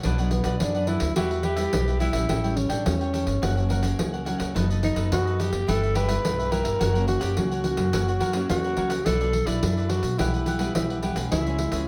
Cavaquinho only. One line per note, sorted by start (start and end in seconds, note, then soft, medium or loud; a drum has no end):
0.04 0.17 D4 medium
0.04 0.18 B4 medium
0.04 0.18 D5 medium
0.04 0.18 F#5 medium
0.19 0.30 B4 soft
0.19 0.31 D5 soft
0.19 0.31 F#5 soft
0.31 muted cavaquinho stroke soft
0.44 0.73 B4 medium
0.44 0.73 D5 medium
0.44 0.72 F#5 medium
0.75 0.86 B4 soft
0.75 0.87 D5 soft
0.75 0.88 F#5 soft
0.87 0.99 D4 soft
0.87 1.00 B4 soft
0.87 1.00 D5 soft
0.87 1.00 F#5 medium
1.00 muted cavaquinho stroke soft
1.16 1.29 E4 medium
1.16 1.30 G4 medium
1.16 1.30 B4 medium
1.16 1.29 E5 medium
1.30 1.43 G4 soft
1.30 1.43 B4 soft
1.30 1.44 E5 soft
1.43 1.57 E4 medium
1.43 1.57 G4 medium
1.43 1.56 B4 medium
1.43 1.55 E5 medium
1.56 1.86 G4 medium
1.56 1.85 B4 medium
1.56 1.85 E5 medium
1.87 1.99 G4 soft
1.87 2.00 B4 soft
1.87 2.00 E5 soft
1.99 2.13 E4 medium
1.99 2.13 G4 medium
1.99 2.13 B4 medium
1.99 2.11 E5 medium
2.13 2.28 G4 soft
2.13 2.28 B4 soft
2.13 2.27 E5 medium
2.29 2.42 G4 medium
2.29 2.43 A4 medium
2.29 2.43 C#5 medium
2.29 2.42 G5 medium
2.44 2.56 A4 soft
2.44 2.56 C#5 soft
2.44 2.56 G5 medium
2.56 muted cavaquinho stroke soft
2.69 2.99 A4 medium
2.69 2.98 C#5 medium
2.69 2.98 G5 medium
3.00 3.12 A4 soft
3.00 3.13 C#5 soft
3.00 3.13 G5 soft
3.13 3.25 G4 soft
3.13 3.26 A4 soft
3.13 3.26 C#5 soft
3.13 3.26 G5 soft
3.26 muted cavaquinho stroke soft
3.42 3.55 F#4 medium
3.42 3.56 A#4 medium
3.42 3.56 C#5 medium
3.42 3.56 F#5 medium
3.57 3.69 A#4 soft
3.57 3.69 C#5 soft
3.57 3.70 F#5 medium
3.69 3.83 F#4 medium
3.69 3.83 A#4 medium
3.69 3.82 C#5 medium
3.69 3.81 F#5 medium
3.82 4.12 A#4 medium
3.82 4.11 C#5 medium
3.82 4.10 F#5 medium
4.13 4.25 A#4 soft
4.13 4.26 C#5 soft
4.13 4.26 F#5 medium
4.25 4.39 F#4 medium
4.25 4.40 A#4 medium
4.25 4.39 C#5 medium
4.25 4.37 F#5 medium
4.38 4.54 A#4 soft
4.38 4.53 C#5 soft
4.38 4.53 F#5 medium
4.54 4.68 D#4 medium
4.54 4.68 A4 medium
4.54 4.68 B4 medium
4.54 4.68 D#5 medium
4.70 4.82 A4 soft
4.70 4.82 B4 soft
4.70 4.82 D#5 medium
4.82 muted cavaquinho stroke soft
4.94 5.24 A4 medium
4.94 5.24 B4 medium
4.94 5.23 D#5 medium
5.25 5.38 A4 soft
5.25 5.39 B4 soft
5.25 5.39 D#5 medium
5.38 5.50 D#4 medium
5.38 5.51 A4 soft
5.38 5.51 B4 medium
5.38 5.52 D#5 soft
5.52 muted cavaquinho stroke soft
5.67 5.80 E4 medium
5.67 5.81 G4 medium
5.67 5.81 B4 medium
5.67 5.81 E5 medium
5.82 5.94 G4 soft
5.82 5.95 B4 medium
5.82 5.95 E5 medium
5.94 6.08 E4 medium
5.94 6.09 G4 medium
5.94 6.07 B4 medium
5.94 6.06 E5 medium
6.08 6.37 G4 medium
6.08 6.36 B4 medium
6.08 6.36 E5 medium
6.38 6.50 G4 soft
6.38 6.51 B4 soft
6.38 6.51 E5 soft
6.50 6.64 E4 medium
6.50 6.65 G4 medium
6.50 6.64 B4 medium
6.50 6.62 E5 medium
6.64 6.79 G4 soft
6.64 6.79 B4 soft
6.64 6.78 E5 medium
6.79 6.93 F#4 medium
6.79 6.93 A#4 medium
6.79 6.94 C#5 medium
6.79 6.93 F#5 medium
6.94 7.06 A#4 soft
6.94 7.07 C#5 soft
6.94 7.07 F#5 medium
7.07 muted cavaquinho stroke soft
7.19 7.49 A#4 medium
7.19 7.49 C#5 medium
7.19 7.48 F#5 medium
7.50 7.63 A#4 soft
7.50 7.63 C#5 soft
7.50 7.64 F#5 soft
7.63 7.76 F#4 soft
7.63 7.76 A#4 soft
7.63 7.76 C#5 soft
7.63 7.77 F#5 soft
7.77 muted cavaquinho stroke soft
7.93 8.06 F#4 medium
7.93 8.07 A#4 medium
7.93 8.07 C#5 medium
7.93 8.07 F#5 medium
8.08 8.20 A#4 soft
8.08 8.20 C#5 soft
8.08 8.21 F#5 medium
8.20 8.34 F#4 medium
8.20 8.34 A#4 medium
8.20 8.33 C#5 medium
8.20 8.32 F#5 medium
8.33 8.63 A#4 medium
8.33 8.62 C#5 medium
8.33 8.61 F#5 medium
8.64 8.76 A#4 soft
8.64 8.77 C#5 soft
8.64 8.77 F#5 medium
8.76 8.90 F#4 medium
8.76 8.91 A#4 medium
8.76 8.90 C#5 medium
8.76 8.88 F#5 medium
8.89 9.05 A#4 soft
8.89 9.04 C#5 soft
8.89 9.04 F#5 medium
9.06 9.19 D4 medium
9.06 9.19 A4 medium
9.06 9.20 B4 medium
9.06 9.20 D5 medium
9.21 9.33 A4 soft
9.21 9.33 B4 soft
9.21 9.33 D5 soft
9.34 muted cavaquinho stroke soft
9.46 9.75 A4 medium
9.46 9.75 B4 medium
9.46 9.74 D5 medium
9.77 9.89 A4 soft
9.77 9.90 B4 soft
9.77 9.90 D5 medium
9.90 10.02 D4 soft
9.90 10.02 A4 medium
9.90 10.03 B4 soft
9.90 10.03 D5 medium
10.03 muted cavaquinho stroke soft
10.18 10.31 E4 medium
10.18 10.32 G4 medium
10.18 10.32 B4 medium
10.18 10.32 F#5 medium
10.34 10.45 G4 soft
10.34 10.46 B4 soft
10.34 10.46 F#5 medium
10.46 10.59 E4 medium
10.46 10.60 G4 medium
10.46 10.59 B4 medium
10.46 10.58 F#5 medium
10.59 10.88 G4 soft
10.59 10.88 B4 medium
10.59 10.87 F#5 medium
10.90 11.02 G4 soft
10.90 11.03 B4 soft
10.90 11.02 F#5 soft
11.02 11.16 E4 medium
11.02 11.16 G4 medium
11.02 11.16 B4 medium
11.02 11.14 F#5 medium
11.15 11.30 G4 soft
11.15 11.30 B4 soft
11.15 11.29 F#5 medium
11.31 11.44 E4 medium
11.31 11.45 G#4 medium
11.31 11.45 C#5 medium
11.31 11.45 E5 medium
11.46 11.58 G#4 soft
11.46 11.58 C#5 medium
11.46 11.59 E5 medium
11.59 muted cavaquinho stroke soft
11.72 11.88 G#4 medium
11.72 11.88 C#5 medium
11.72 11.88 E5 medium